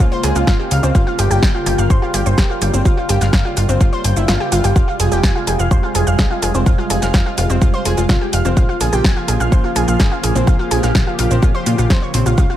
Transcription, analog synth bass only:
0.24 C#2
0.36 C#2
0.47 G#1
0.71 C#2
0.83 C#2
1.19 G1
1.31 G1
1.66 G1
1.78 G1
2.14 G1
2.26 G1
2.62 G1
2.74 G1
2.85 G1
3.09 G1
3.21 G1
3.57 G1
3.69 G1
3.81 G1
4.04 G1
4.17 G1
4.28 G1
4.52 G1
4.64 G1
5.00 F1
5.12 F1
5.23 F1
5.47 F1
5.59 F1
5.95 F1
6.07 F1
6.19 C2
6.43 F1
6.55 F1
6.90 F1
7.02 F1
7.14 F1
7.38 F1
7.50 F1
7.85 F1
7.97 F1
8.09 C2
8.33 F1
8.45 F1
8.81 A#1
8.93 A#1
9.04 A#1
9.28 A#1
9.40 A#1
9.52 A#1
9.76 A#1
9.88 A#1
10.24 A#1
10.36 A#1
10.47 A#1
10.71 A#1
10.83 A#1
11.19 A#1
11.31 A#1
11.43 A#2
11.66 A#2
11.78 A#1
11.90 F2
12.14 A#1
12.26 A#1
12.38 C#2

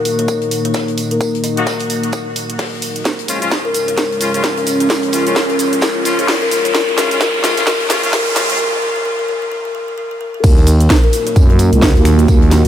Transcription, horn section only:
1.57 F#3 A#3 D#4 F#4
3.28 F3 G#3 C#4 F4
3.42 F3 G#3 C#4 F4
4.21 F3 G#3 C#4 F4
4.34 F3 G#3 C#4 F4
5.13 F3 G#3 C#4 F4
5.27 F3 G#3 C#4 F4
6.05 F3 G#3 C#4 F4
6.19 F3 G#3 C#4 F4
6.97 F3 G#3 C#4 F4
7.11 F3 G#3 C#4 F4
7.44 F3 G#3 C#4 F4
7.57 F3 G#3 C#4 F4
7.90 F3 G#3 C#4 F4
8.03 F3 G#3 C#4 F4
8.36 F3 G#3 C#4 F4
8.50 F3 G#3 C#4 F4

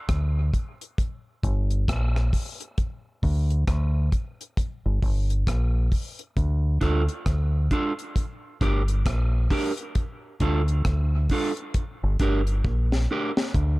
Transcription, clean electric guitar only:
6.81 D4 F4 A4
7.71 D4 F4 A4
8.61 D4 G4 A#4
9.51 D4 G4 A#4
10.41 D4 F4 A4
11.31 D4 F4 A4
12.20 D4 G4 A#4
13.11 D4 G4 A#4

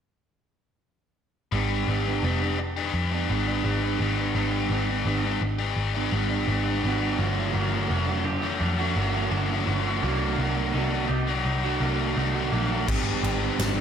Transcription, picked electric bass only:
1.52 G#1
1.88 G#1
2.23 F1
2.94 F2
3.29 G#1
3.64 G#1
4.00 G#1
4.35 G#1
4.70 G#1
5.06 G#1
5.41 G#1
5.76 G#1
6.12 G#1
6.48 G#1
6.84 G#1
7.19 G1
7.54 G1
7.90 F1
8.61 F2
8.96 G1
9.31 G1
9.67 G1
10.03 C2
10.38 C2
10.74 C2
11.09 C2
11.45 C2
11.80 C2
12.17 C2
12.52 A#1
12.88 G#1
13.23 G#1
13.59 G#1

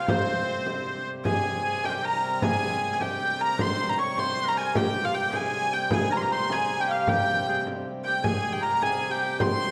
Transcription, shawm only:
0.07 C4
1.26 G#4
1.64 G#4
1.84 G4
1.90 F4 G4
2.02 A#4
2.21 A#4
2.41 G#4
3.00 G4
3.39 A#4
3.58 C5
3.97 C#5
4.17 C5
4.45 A#4
4.75 G4
5.01 F4 G4
5.11 G4
5.31 G#4
5.90 G#4
6.10 A#4
6.19 A#4
6.31 C5
6.50 G#4
6.80 G4
7.10 G4
7.49 G#4
8.06 G4
8.24 G#4
8.63 A#4
8.82 G#4
9.12 G4
9.39 C5

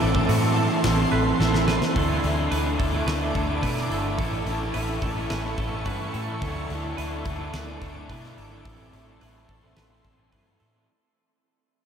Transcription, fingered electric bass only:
0.02 A1
0.29 A2
0.84 A1
1.12 A1
1.40 A1
1.96 D2
2.24 D2
2.51 D2
2.80 D2
3.06 D2
3.35 D2
3.63 B2
3.90 G1
4.19 A1
4.46 A1
4.75 A1
5.02 A1
5.31 A1
5.58 A1
5.86 G2
6.14 A2
6.42 D2
6.70 D2
6.98 D2
7.26 D2
7.54 D2
7.82 D2
8.10 B2
8.37 G#1
8.66 A1
8.93 A1
9.22 A1
9.50 A1
9.77 A1
10.05 A1
10.32 G2
10.61 A2

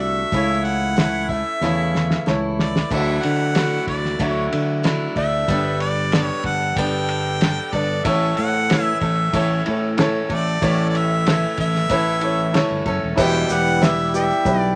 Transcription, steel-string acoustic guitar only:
Already playing: D3 A3 D4 F#4
0.32 C#3 E3 A3 C#4 E4
0.96 E3 A3 C#4 E4
1.30 A3 C#4 E4
1.62 C#3 E3 A3 C#4 E4
2.26 E3 A3 E4
2.90 D3 F#3 A3 D4 E4
3.55 F#3 A3 D4 E4
4.19 D3 F#3 A3 D4 E4
4.83 F#3 A3 D4 E4
5.16 A3 D4 E4
5.48 G3 B3 D4 A4
6.13 G3 B3 D4 A4
6.78 G3 B3 D4 A4
7.41 G3 B3 D4 A4
7.73 B3 D4 A4
8.05 A2 E3 A3 C#4 A4
8.69 E3 A3 C#4 A4
9.02 A3 C#4 A4
9.34 A2 E3 A3 C#4 A4
9.97 E3 A3 C#4 A4
10.30 A3 A4
10.62 A2 E3 A3 C#4 A4
11.27 E3 A3 C#4 A4
11.90 A2 E3 A3 C#4 A4
12.55 E3 A3 C#4 A4
12.86 A3 C#4 A4
13.19 E2 B2 E3 G3 B3 G4
13.50 E3 G3 B3 G4
13.82 E3 G3 B3 G4
14.14 E3 G3 B3 G4

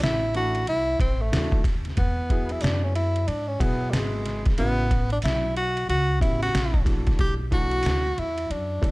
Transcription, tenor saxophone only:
0.04 E4
0.36 F#4
0.69 E4
1.01 C4
1.22 A3
1.98 B3
2.52 E4
2.62 D4
2.84 C#4
2.96 E4
3.28 D4
3.48 C#4
3.61 B3
3.90 G3 G#3
4.59 B3
5.13 D4
5.24 E4
5.57 F#4
5.90 F#4
6.22 E4
6.43 F#4
7.21 G4
7.53 F#4
8.19 E4
8.52 D4

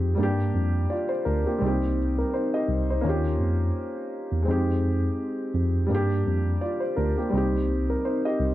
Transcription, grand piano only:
Already playing: G#3 C4 D#4 G4
0.15 G3 A#3
0.20 D4 G4
0.90 F4 D5
1.09 C5
1.25 D4 A#4
1.46 A#3 G4
1.58 G3 C4
1.64 D#4 G4
2.18 A#4
2.33 D#4 C5
2.54 G4 D#5
2.90 D#4 C5
3.01 A#3 C#4
3.07 F4 G4
4.43 G#3 C4
4.48 D#4 G4
5.87 G3 A#3
5.92 D4 G4
6.61 F4 D5
6.80 C5
6.96 D4 A#4
7.18 A#3 G4
7.29 G3 C4
7.35 D#4 G4
7.90 A#4
8.05 D#4 C5
8.25 G4 D#5

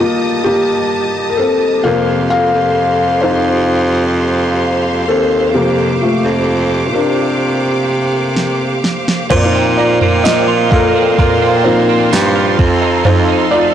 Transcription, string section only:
Already playing: G3 G4 D#5 D#6
0.00 A5
1.85 C5 F5 C6
5.55 D6
9.32 A#3 C5 F5 C6
12.60 D#4 A4

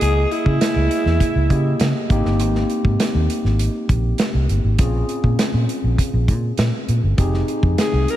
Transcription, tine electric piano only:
Already playing: A#3 E4 G#4 D#5
1.50 A#3 E4 G4 D#5
2.10 A#3 C4 D#4 G4
4.78 C4 C#4 F4 G#4
7.17 C4 D#4 G4 G#4

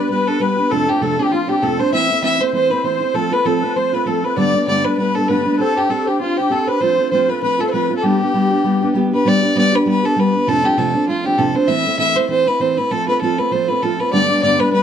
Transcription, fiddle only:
0.10 B4
0.28 A4
0.41 B4
0.71 A4
0.88 G4
1.02 A4
1.19 G4
1.32 F4
1.49 G4
1.62 A4
1.80 C5
1.94 E5
2.24 E5
2.41 C5
2.54 C5
2.70 B4
2.84 C5
3.15 A4
3.33 B4
3.46 A4
3.77 C5
3.94 B4
4.07 A4
4.24 B4
4.38 D5
4.68 D5
4.85 B4
4.98 B4
5.14 A4
5.28 B4
5.59 A4
5.77 G4
5.90 A4
6.07 G4
6.21 F4
6.37 G4
6.51 A4
6.68 B4
6.81 C5
7.11 C5
7.29 B4
7.43 B4
7.60 A4
7.67 C5
7.73 B4
7.98 A4
8.03 G4
9.14 B4
9.28 D5
9.58 D5
9.75 B4
9.89 B4
10.05 A4
10.19 B4
10.48 A4
10.65 G4
10.78 A4
11.09 F4
11.26 G4
11.38 A4
11.55 C5
11.68 E5
11.99 E5
12.16 C5
12.29 C5
12.47 B4
12.61 C5
12.78 B4
12.91 A4
13.09 B4
13.21 A4
13.38 B4
13.52 C5
13.68 B4
13.82 A4
14.00 B4
14.13 D5
14.43 D5
14.60 B4
14.73 B4

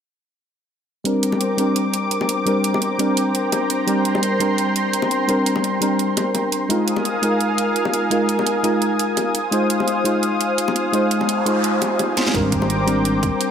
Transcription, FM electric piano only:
1.04 G3 C4 D4 A#4
1.57 G3 C4 D4 A#4
2.45 G3 C4 D4 A#4
2.98 G3 C4 D4 A#4
3.87 G3 C4 D4 A#4
4.39 G3 C4 D4 A#4
5.28 G3 C4 D4 A#4
5.80 G3 C4 D4 A#4
6.69 G#3 D#4 F4 A#4
7.22 G#3 D#4 F4 A#4
8.10 G#3 D#4 F4 A#4
8.63 G#3 D#4 F4 A#4
9.51 G#3 D#4 F4 C5
10.04 G#3 D#4 F4 C5
10.92 G#3 D#4 F4 C5
11.45 G#3 D#4 F4 C5
12.33 G3 C4 D4 A#4
12.86 G3 C4 D4 A#4

